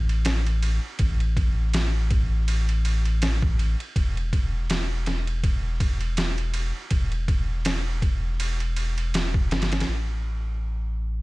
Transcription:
0.00 0.79 A1 medium
0.09 ride soft
0.25 snare loud
0.25 ride medium
0.47 ride soft
0.63 ride medium
0.99 3.75 A1 medium
0.99 kick loud
0.99 ride medium
1.20 ride soft
1.37 kick medium
1.37 ride medium
1.74 snare loud
1.74 ride medium
2.11 kick loud
2.11 ride medium
2.48 ride medium
2.69 ride soft
2.85 ride medium
3.05 ride soft
3.22 snare loud
3.22 ride medium
3.42 kick medium
3.59 ride medium
3.80 ride soft
3.96 6.72 E1 loud
3.96 kick loud
3.96 ride medium
4.17 ride soft
4.33 kick medium
4.33 ride medium
4.70 snare loud
4.70 ride medium
5.06 snare soft
5.06 ride medium
5.27 ride soft
5.44 kick loud
5.44 ride medium
5.80 kick medium
5.80 ride medium
6.01 ride soft
6.17 snare loud
6.17 ride medium
6.38 ride soft
6.54 ride medium
6.91 9.52 E1 loud
6.91 kick loud
6.91 ride medium
7.12 ride soft
7.28 kick loud
7.28 ride medium
7.65 snare loud
7.65 ride medium
8.02 kick medium
8.02 ride medium
8.40 ride medium
8.60 ride soft
8.76 ride medium
8.98 ride soft
9.14 snare loud
9.14 ride medium
9.34 kick loud
9.51 9.84 G1 medium
9.51 snare medium
9.51 ride medium
9.62 snare medium
9.62 ride medium
9.72 snare medium
9.72 ride medium
9.80 snare medium
9.80 ride medium
9.88 11.22 A1 medium

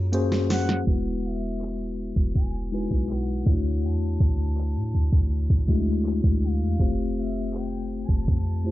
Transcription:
0.00 0.83 F#2 loud
0.12 0.80 A#3 medium
0.12 0.81 C#4 medium
0.12 0.81 F#4 medium
0.12 0.81 G#4 medium
0.12 0.82 C5 loud
0.12 closed hi-hat medium
0.32 snare medium
0.50 1.27 F#5 loud
0.50 snare loud
0.50 open hi-hat medium
0.69 snare loud
0.87 2.13 E1 loud
0.87 2.22 G#3 medium
0.87 2.23 B3 medium
0.87 2.23 E4 medium
0.87 2.23 F#4 medium
0.87 2.24 B4 medium
0.87 kick loud
1.25 1.99 E5 loud
1.62 clap loud
1.98 closed hi-hat medium
2.16 2.88 E1 loud
2.16 kick medium
2.35 2.70 G#5 loud
2.35 kick medium
2.35 closed hi-hat medium
2.72 3.46 G#3 medium
2.72 3.46 D#4 medium
2.72 3.45 E4 medium
2.72 3.47 F#4 medium
2.72 3.47 B4 medium
2.72 3.07 G#5 medium
2.72 closed hi-hat medium
2.91 3.44 B1 loud
2.91 kick medium
3.10 3.86 F#5 loud
3.10 clap loud
3.45 3.85 D2 loud
3.45 4.81 A3 medium
3.45 4.82 D4 medium
3.45 4.82 E4 medium
3.45 3.53 F4 medium
3.45 4.83 C#5 medium
3.45 kick loud
3.45 closed hi-hat medium
3.54 4.86 F#4 medium
3.83 4.19 E2 loud
3.83 6.06 A5 loud
3.83 closed hi-hat medium
4.20 4.78 D2 loud
4.20 kick medium
4.20 closed hi-hat medium
4.58 clap loud
4.76 4.94 A2 loud
4.94 5.12 D2 loud
5.12 5.48 D2 loud
5.12 kick medium
5.31 closed hi-hat medium
5.50 6.21 D2 medium
5.50 kick loud
5.67 6.71 G#3 loud
5.67 6.70 A3 medium
5.67 6.70 D4 medium
5.67 6.70 E4 medium
5.67 6.71 F#4 medium
5.67 kick loud
5.67 closed hi-hat medium
6.06 clap loud
6.24 6.63 D2 loud
6.24 kick medium
6.42 7.13 F5 loud
6.42 closed hi-hat medium
6.61 6.79 E2 loud
6.79 8.05 F1 loud
6.79 8.15 A3 medium
6.79 8.15 C4 medium
6.79 8.15 F4 medium
6.79 8.16 G4 medium
6.79 8.16 C5 medium
6.79 kick loud
6.79 closed hi-hat medium
7.16 7.57 E5 medium
7.16 closed hi-hat medium
7.54 8.04 G5 loud
7.54 clap loud
7.90 closed hi-hat medium
8.05 8.27 A5 loud
8.09 8.27 F1 loud
8.09 kick loud
8.27 8.71 F2 loud
8.27 8.71 A5 loud
8.27 kick medium
8.27 closed hi-hat medium
8.64 8.71 A3 medium
8.64 8.71 E4 medium
8.64 8.71 F4 medium
8.64 8.71 G4 medium
8.64 8.71 C5 medium
8.64 closed hi-hat medium

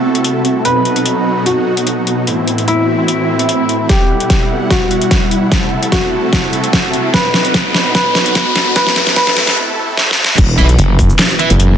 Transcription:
0.00 0.63 C3 medium
0.00 0.63 A3 medium
0.00 0.65 C4 medium
0.00 0.61 E4 medium
0.00 0.57 F#4 medium
0.00 0.63 A4 medium
0.00 1.30 A4 medium
0.00 0.65 E5 medium
0.00 1.30 A5 medium
0.15 closed hi-hat soft
0.24 closed hi-hat medium
0.45 closed hi-hat soft
0.65 2.26 B2 medium
0.65 2.26 F#3 medium
0.65 2.27 B3 medium
0.65 2.26 D#4 medium
0.65 2.26 F#4 medium
0.65 1.39 B4 medium
0.65 closed hi-hat medium
0.85 closed hi-hat soft
0.96 closed hi-hat soft
1.06 closed hi-hat medium
1.23 2.92 F#4 medium
1.46 1.99 F#4 medium
1.46 closed hi-hat medium
1.77 closed hi-hat medium
1.87 closed hi-hat medium
2.07 closed hi-hat soft
2.27 3.88 A2 medium
2.27 3.88 E3 medium
2.27 3.88 C4 medium
2.27 3.89 C4 medium
2.27 3.88 E4 medium
2.27 closed hi-hat medium
2.48 closed hi-hat medium
2.58 closed hi-hat soft
2.68 3.82 E4 medium
2.68 closed hi-hat medium
2.78 4.55 A4 medium
3.01 4.55 E5 medium
3.08 closed hi-hat medium
3.08 swell medium
3.39 closed hi-hat medium
3.49 closed hi-hat medium
3.69 closed hi-hat soft
3.89 5.50 B2 medium
3.89 5.50 G3 medium
3.89 6.17 E4 medium
3.89 7.10 E4 medium
3.89 4.63 G4 medium
3.89 kick medium
3.89 snare soft
3.89 closed hi-hat medium
3.89 riser medium
4.14 6.17 G3 medium
4.20 closed hi-hat soft
4.30 kick loud
4.30 snare soft
4.30 closed hi-hat medium
4.41 6.17 F#5 medium
4.70 5.24 F#4 medium
4.70 kick loud
4.70 snare soft
4.70 closed hi-hat medium
4.91 closed hi-hat soft
5.01 closed hi-hat medium
5.11 kick medium
5.11 snare medium
5.11 closed hi-hat medium
5.31 closed hi-hat medium
5.52 7.12 C3 medium
5.52 7.12 A3 medium
5.52 7.14 C4 medium
5.52 kick medium
5.52 snare medium
5.52 closed hi-hat medium
5.82 7.79 A4 medium
5.82 closed hi-hat medium
5.92 7.06 F#4 medium
5.92 kick loud
5.92 snare medium
5.92 closed hi-hat medium
6.33 kick loud
6.33 snare medium
6.33 closed hi-hat medium
6.53 closed hi-hat soft
6.64 closed hi-hat soft
6.73 kick medium
6.73 snare medium
6.73 closed hi-hat medium
6.93 closed hi-hat soft
7.14 8.74 B2 medium
7.14 8.74 F#3 medium
7.14 8.76 B3 medium
7.14 8.74 D#4 medium
7.14 7.87 B4 medium
7.14 kick loud
7.14 snare medium
7.14 closed hi-hat medium
7.30 9.41 F#4 medium
7.34 snare medium
7.45 closed hi-hat soft
7.54 kick loud
7.54 snare medium
7.54 closed hi-hat medium
7.75 snare medium
7.95 8.68 B4 medium
7.95 kick medium
7.95 snare medium
7.95 closed hi-hat medium
8.15 snare medium
8.15 closed hi-hat soft
8.26 closed hi-hat medium
8.35 kick loud
8.35 snare medium
8.35 closed hi-hat medium
8.56 snare medium
8.56 closed hi-hat medium
8.76 10.36 C3 medium
8.76 10.36 A3 medium
8.76 10.36 E4 medium
8.76 10.36 A4 medium
8.76 9.15 B4 loud
8.76 kick medium
8.76 snare medium
8.76 closed hi-hat medium
8.87 snare medium
8.96 snare medium
9.07 snare medium
9.07 closed hi-hat soft
9.16 9.55 B4 loud
9.16 kick loud
9.16 snare loud
9.16 closed hi-hat medium
9.27 snare medium
9.37 snare loud
9.47 snare medium
9.97 snare medium
10.11 snare medium
10.25 snare loud
10.38 10.57 E1 medium
10.38 11.78 B2 medium
10.38 11.78 E3 medium
10.38 11.78 E4 medium
10.38 11.78 B4 medium
10.38 kick loud
10.38 closed hi-hat medium
10.38 crash loud
10.38 impact medium
10.58 10.77 B1 loud
10.58 10.64 E4 medium
10.58 10.64 B4 medium
10.58 10.64 E5 medium
10.58 shaker medium
10.69 closed hi-hat medium
10.79 11.08 F#1 medium
10.79 closed hi-hat medium
10.99 kick medium
10.99 open hi-hat loud
11.10 shaker medium
11.19 snare loud
11.19 clap medium
11.19 closed hi-hat medium
11.30 shaker soft
11.39 11.48 E4 medium
11.39 11.48 B4 medium
11.39 11.48 E5 medium
11.39 closed hi-hat medium
11.50 11.78 F#1 loud
11.50 closed hi-hat medium
11.60 closed hi-hat medium

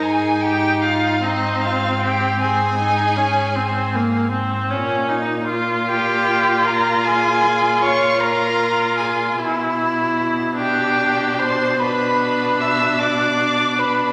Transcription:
0.00 4.74 G#2 medium
0.00 1.19 D#4 medium
0.00 0.43 G#5 medium
0.05 0.45 G#4 medium
0.42 0.87 G4 medium
0.42 0.81 G5 medium
0.82 1.26 F4 medium
0.82 1.25 F5 medium
1.23 2.38 C4 medium
1.23 1.67 D#4 medium
1.23 1.63 D#5 medium
1.61 2.02 F5 medium
1.65 2.06 F4 medium
2.00 2.42 G4 medium
2.00 2.39 G5 medium
2.40 2.77 C4 medium
2.40 4.34 G#4 medium
2.40 4.30 G#5 medium
2.79 3.19 D#4 medium
3.17 3.57 C#4 medium
3.56 3.97 C4 medium
3.96 4.31 A#3 medium
4.32 4.72 C4 medium
4.70 9.36 A#2 medium
4.70 5.11 C#4 medium
5.09 5.49 D#4 medium
5.50 9.40 F4 medium
5.87 6.66 G4 medium
5.87 6.67 G5 medium
6.65 7.07 A#4 medium
6.65 7.07 A#5 medium
7.05 7.83 G#4 medium
7.05 7.82 G#5 loud
7.82 8.22 C#5 medium
7.82 8.22 C#6 medium
8.20 8.99 A#4 medium
8.20 8.96 A#5 loud
8.97 9.37 G#4 medium
8.97 9.36 G#5 medium
9.37 14.13 B2 medium
9.37 10.57 E4 medium
10.57 11.77 D4 medium
10.57 11.41 G4 medium
10.57 11.41 G5 medium
11.39 11.81 C5 medium
11.39 11.80 C6 medium
11.79 14.13 D4 medium
11.79 12.62 B4 medium
11.79 12.62 B5 medium
12.60 13.03 E5 medium
12.60 13.00 E6 medium
12.99 13.80 D5 medium
12.99 13.81 D6 medium
13.78 14.13 B4 medium
13.78 14.13 B5 medium

